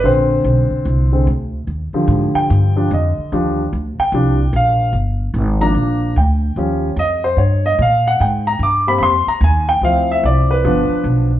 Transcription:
X:1
M:4/4
L:1/8
Q:"Swing" 1/4=147
K:Eb
V:1 name="Grand piano"
c6 z2 | z3 g3 e2 | z3 g3 f2 | z3 b3 g2 |
z2 e c _d e f _g | g b d' _c' [c'=c'] b a g | f _f d _c3 z2 |]
V:2 name="Grand piano" clef=bass
[D,A,C]4- [D,A,C] [D,A,C] z2 | z [D,F,G,]4 [F,G,D] z2 | [F,G,D] z3 [F,G,D] z3 | z3 [F,B,D]3 z2 |
[F,G,_D] z6 z | z3 [G,B,C] z4 | [F,C_F]4 [=F,=B,D]3 z |]
V:3 name="Upright bass" clef=bass
B,,,2 _C,, z =C,,2 D,,2 | E,, z A,, z G,,2 F,, z | E,,2 D,, z C,,2 B,,,2 | G,,,2 A,,,2 B,,,2 D,,2 |
E,,2 F,,2 G,,2 B,,2 | A,,2 G,,2 F,, z E,,2 | D,,2 C,,2 G,,, z =B,,,2 |]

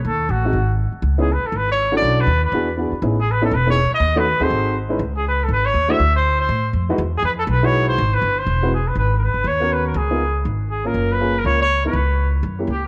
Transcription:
X:1
M:4/4
L:1/16
Q:"Swing" 1/4=242
K:F#mix
V:1 name="Trumpet"
=A4 F8 z4 | [K:C#m] z2 G2 B2 A2 B2 c4 =d2- | =d2 B4 B6 z4 | z2 G2 B2 A2 B2 c4 d2- |
d2 B4 ^B6 z4 | z2 G2 B2 A2 B2 c4 e2- | e2 =c4 c6 z4 | z2 G2 B2 A2 B2 c4 ^B2- |
^B2 =B4 ^B6 G2 =B2 | [K:G#m] B3 A B4 c4 B2 A2 | G8 z4 G2 A2- | A2 B4 A2 c2 c4 B2- |
B6 z6 =G2 z2 |]
V:2 name="Upright piano"
z6 [G,^B,DF]2 z8 | [K:C#m] z2 [B,CDEG]2 z8 z2 [C=DEFA]2- | [C=DEFA]4 z4 [B,DEFG]2 z2 [B,DEFG]2 z2 | [B,CDEG]2 z4 [B,CDEA]2 z2 [B,CDEG]2 z4 |
z2 [A,CDFA]2 z2 [^B,DFGA]6 z2 [G,CDE=B]2 | z12 z2 [A,=DEF^B]2 | z12 z2 [G,DEFB]2 | z8 z2 [G,DEFB]6 |
z8 z2 [G,^B,EF=B]2 z4 | [K:G#m] z8 z2 [B,CFA]6 | z2 [B,D^EA]2 z8 z2 [A,CEA]2- | [A,C^EA]4 [A,CEG]2 z2 [A,CEA]2 z4 [B,D=EB]2 |
z8 z2 [A,CE=G]2 z4 |]
V:3 name="Upright bass" clef=bass
D,,4 =A,,,4 G,,,6 z2 | [K:C#m] C,,6 z2 G,,,8 | B,,,4 D,,4 E,,6 z2 | A,,,8 E,,,6 z2 |
D,,6 D,,2 G,,,8 | C,,8 G,,,4 D,,4 | =D,,8 A,,4 ^E,,4 | E,,4 ^E,,4 B,,,8 |
G,,,4 =G,,,4 E,,,8 | [K:G#m] G,,,6 =G,,,2 D,,8 | C,,8 G,,,8 | F,,,8 C,,8 |
C,,8 F,,4 C,,4 |]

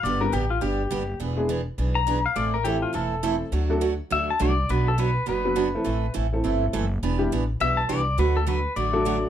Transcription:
X:1
M:4/4
L:1/8
Q:"Swing" 1/4=206
K:Ador
V:1 name="Pedal steel guitar"
d _B G =F G4 | z4 z _b2 =f | d _B G =F A4 | z4 e a d2 |
B A B2 B4- | B2 z6 | z4 e a d2 | B A B2 d4 |]
V:2 name="Upright piano"
z [G,B,DGB] z6 | z [^G,B,DE^G] z6 | z2 [E,A,CEA]3 z [E,A,CEc] z | z [F,A,DFA] z6 |
z4 z [F,B,DFB] z [E,A,CEA] | z3 [E,A,CEA]3 z2 | z [G,B,DEG] z6 | z4 z [F,A,DFA]3 |]
V:3 name="Steel-string acoustic guitar"
[D,G,B,DG] z [D,G,B,DG] z [D,G,B,DG] z [D,G,B,DG] z | [E,B,D^G] z [E,B,DG] z [E,B,DG] z [E,B,DG] z | [E,A,CEA] z [E,A,CEA] z [E,A,CEA] z [E,A,CEA] z | [D,F,A,DF] z [D,F,A,DF] z [D,F,A,DF] z [D,F,A,DF] z |
[B,,F,B,DF] z [B,,F,B,DF] z [B,,F,B,DF] z [B,,F,B,DF] z | [E,A,CEA] z [E,A,CEA] z [E,A,CEA] z [E,A,CEA] z | [E,B,DG] z [E,B,DG] z [E,B,DG] z [E,B,DG] z | [D,F,A,DF] z [D,F,A,DF] z [D,F,A,DF] z [D,F,A,DF] z |]
V:4 name="Upright bass" clef=bass
G,,,2 A,,,2 G,,,2 F,,,2 | E,,,4 B,,,4 | A,,,4 E,,,4 | D,,4 D,,2 C,,2 |
B,,,4 F,,,4 | A,,,2 A,,,2 G,,,2 F,,,2 | E,,,2 A,,,2 B,,,2 C,,2 | D,,4 A,,,4 |]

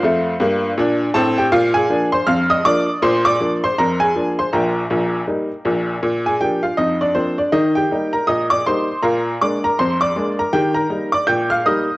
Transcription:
X:1
M:2/4
L:1/16
Q:"Swing 16ths" 1/4=80
K:Eb
V:1 name="Upright piano"
[Fcf]4 z2 [=A=a] [Gg] | [Ff] [Aa]2 [cc'] [ff'] [ee'] [dd']2 | [cc'] [dd']2 [cc'] [Bb] [Aa]2 [cc'] | [Bgb]8- |
[Bgb] [Aa] [Gg] [Ff] [Ee] [Dd] [Cc] [Dd] | [Ee] [Gg]2 [Bb] [ee'] [dd'] [cc']2 | [Bfb]2 [dd'] [Bb] [cc'] [dd']2 [Bb] | [Gg] [Bb]2 [dd'] [gg'] [ff'] [ee']2 |]
V:2 name="Upright piano" clef=bass
[F,,=A,]2 [G,,B,]2 [B,,D]2 [=A,,C]2 | B,,2 [F,B,D]2 F,,2 [F,B,D]2 | B,,2 [F,B,D]2 F,,2 [F,B,D]2 | [B,,,B,,]2 [B,,,B,,]2 [G,B,E]2 [B,,,B,,]2 |
B,,2 [F,B,D]2 F,,2 [F,B,D]2 | E,2 [G,B,E]2 B,,2 [G,B,E]2 | B,,2 [A,B,D]2 F,,2 [A,B,D]2 | E,2 [G,B,E]2 B,,2 [G,B,E]2 |]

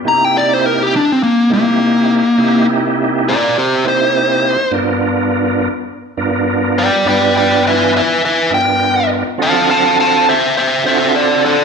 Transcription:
X:1
M:4/4
L:1/16
Q:"Swing 16ths" 1/4=103
K:C
V:1 name="Lead electric guitar"
_b g d c _B G D C _B,2 B,6- | _B,2 z4 [_Bd]2 [Gc]2 c6 | z12 z2 [dg]2 | [dg]2 [dg]2 [Be]2 [Be]2 [Be]2 g4 z2 |
[^ea]2 [ea]2 [ea]2 [c=e]2 [ce]2 [ce]2 [Ad]2 [Ad]2 |]
V:2 name="Tonewheel organ"
[C,_B,^DEG]6 z4 [C,B,DEG]4- [C,B,DEG] z | [C,_B,^DEG]6 z4 [C,B,DEG]4- [C,B,DEG] z | [G,,B,DF^A]6 z4 [G,,B,DFA]4- [G,,B,DFA] z | [G,,B,DFB]6 z4 [G,,B,DF^A]4- [G,,B,DFA] z |
[D,C^E^FA]6 z4 [D,CEFA]4- [D,CEFA] z |]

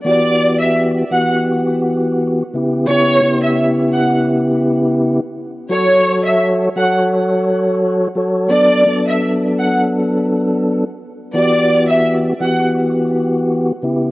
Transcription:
X:1
M:4/4
L:1/16
Q:"Swing 16ths" 1/4=85
K:Edor
V:1 name="Violin section"
d3 e z2 f z8 z | c3 e z2 f z8 z | c3 e z2 f z8 z | d3 e z2 f z8 z |
d3 e z2 f z8 z |]
V:2 name="Tonewheel organ"
[E,B,FG]6 [E,B,FG]8 [C,B,EG]2 | [C,B,EG]2 [C,B,EG]8- [C,B,EG]3 z3 | [F,FAc]6 [F,FAc]8 [F,FAc]2 | [F,B,DA]2 [F,B,DA]8- [F,B,DA]3 z3 |
[E,B,FG]6 [E,B,FG]8 [C,B,EG]2 |]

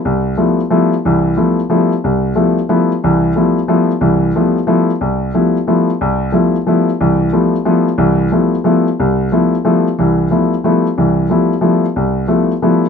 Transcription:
X:1
M:3/4
L:1/8
Q:"Swing" 1/4=181
K:Flyd
V:1 name="Grand piano"
C,,2 [F,G,A,B,E] z [F,G,A,B,E] z | [C,,E,]2 [F,G,A,B,E] z [F,G,A,B,E] z | C,,2 [F,G,A,B,E] z [F,G,A,B,E] z | [C,,E,]2 [F,G,A,B,E] z [F,G,A,B,E] z |
[C,,E,]2 [F,G,A,B,E] z [F,G,A,B,E] z | C,,2 [F,G,A,B,E] z [F,G,A,B,E] z | C,,2 [F,G,A,B,E] z [F,G,A,B,E] z | [C,,E,]2 [F,G,A,B,E] z [F,G,A,B,E] z |
[C,,E,]2 [F,G,A,B,E] z [F,G,A,B,E] z | C,,2 [F,G,A,B,E] z [F,G,A,B,E] z | [C,,E,]2 [F,G,A,B,E] z [F,G,A,B,E] z | [C,,E,]2 [F,G,A,B,E] z [F,G,A,B,E] z |
C,,2 [F,G,A,B,E] z [F,G,A,B,E] z |]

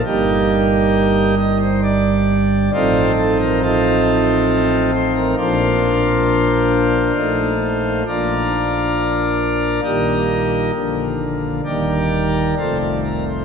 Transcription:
X:1
M:3/4
L:1/16
Q:1/4=67
K:Bb
V:1 name="Pipe organ"
[B,EG]6 e c d4 | [FAc]2 A B [EFA]6 c B | [Fc]12 | [FBd]8 [GBe]4 |
z4 [GBd]4 [FAc] d B c |]
V:2 name="Pipe organ" clef=bass
[G,,,G,,G,]12 | [A,,,A,,F,CE]12 | [B,,,B,,F,B,D]8 [B,,,B,,F,A,E]4 | [B,,,B,,F,B,D]8 [B,,,B,,E,G,B,]4 |
[B,,,B,,D,F,B,]4 [E,,,E,,E,G,B,]4 [F,,,C,,F,,C,F,A,]4 |]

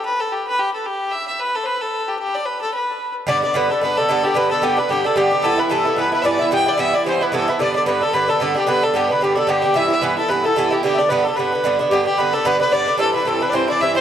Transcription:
X:1
M:4/4
L:1/16
Q:"Swing" 1/4=222
K:G
V:1 name="Accordion"
z16 | z16 | z16 | d2 d2 B2 A2 B2 A4 G2 |
B2 A2 G2 B2 G2 A2 G4 | A2 B2 A4 B2 B2 d2 e2 | g2 d2 e2 d2 c3/2 c/2 B2 A4 | d2 d2 B2 A2 B2 A4 G2 |
B2 A2 G2 B2 G2 A2 G4 | e4 B2 A2 B2 A4 G2 | G3/2 e/2 d2 B2 A2 B6 z2 | G2 G2 B2 A2 B2 B2 d4 |
A2 B2 A2 B2 c2 d2 e2 c2 |]
V:2 name="Fiddle"
B2 A2 G2 B2 G2 A2 G4 | e2 e2 B2 A3/2 c/2 B2 A4 G2 | G2 d2 B2 A2 B6 z2 | d2 d2 B2 A2 B2 A4 G2 |
B2 A2 G2 B2 G2 A2 G4 | A2 B2 A4 B2 B3/2 e/2 d2 e2 | g2 d2 e2 d2 c2 B2 A2 B2 | d2 d2 B2 A2 B2 A4 G2 |
B2 A2 G2 B2 G2 A2 G4 | e2 e2 B2 A2 B2 A4 G2 | G2 d2 B2 A2 B6 z2 | G2 G2 B2 A2 B2 B2 d4 |
A2 B2 A2 B3/2 d/2 c2 d2 e2 c2 |]
V:3 name="Bouzouki"
z16 | z16 | z16 | [G,,D,B,D]2 [D,B,D]2 [G,,D,B,D]2 [D,B,D]2 [G,,D,B,D]2 [D,B,D]2 [G,,D,B,D]2 [D,B,D]2 |
[G,,D,B,D]2 [D,B,D]2 [G,,D,B,D]2 [D,B,D]2 [G,,D,B,D]2 [D,B,D]2 [G,,D,B,D]2 [D,B,D]2 | [G,,E,B,E]2 [E,B,E]2 [G,,E,B,E]2 [E,B,E]2 [G,,E,B,E]2 [E,B,E]2 [G,,E,B,E]2 [E,B,E]2 | [G,,E,B,E]2 [E,B,E]2 [G,,E,B,E]2 [E,B,E]2 [G,,E,B,E]2 [E,B,E]2 [G,,E,B,E]2 [E,B,E]2 | [G,,D,B,D]2 [D,B,D]2 [G,,D,B,D]2 [D,B,D]2 [G,,D,B,D]2 [D,B,D]2 [G,,D,B,D]2 [D,B,D]2 |
[G,,D,B,D]2 [D,B,D]2 [G,,D,B,D]2 [D,B,D]2 [G,,D,B,D]2 [D,B,D]2 [G,,D,B,D]2 [D,B,D]2 | [G,,E,B,E]2 [E,B,E]2 [G,,E,B,E]2 [E,B,E]2 [G,,E,B,E]2 [E,B,E]2 [G,,E,B,E]2 [E,B,E]2 | [G,,D,B,D]2 [D,B,D]2 [G,,D,B,D]2 [D,B,D]2 [G,,D,B,D]2 [D,B,D]2 [G,,D,B,D]2 [D,B,D]2 | [G,,D,B,D]2 [D,B,D]2 [G,,D,B,D]2 [D,B,D]2 [G,,D,B,D]2 [D,B,D]2 [G,,D,B,D]2 [D,B,D]2 |
[G,,E,CE]2 [E,CE]2 [G,,E,CE]2 [E,CE]2 [G,,E,CE]2 [E,CE]2 [G,,E,CE]2 [CE]2 |]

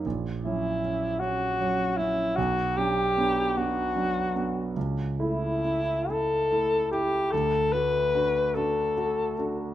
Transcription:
X:1
M:12/8
L:1/8
Q:3/8=49
K:Bm
V:1 name="Alto saxophone"
z E2 F2 E F G2 F3 | z E2 A2 G A B2 A3 |]
V:2 name="Grand piano"
^A,,, [F,C] C C [F,C] C B,,, [F,D] [B,D] [B,D] [F,D] [B,D] | C,, [A,E] E E [A,E] E D,, [A,F] [DF] [DF] [A,F] [DF] |]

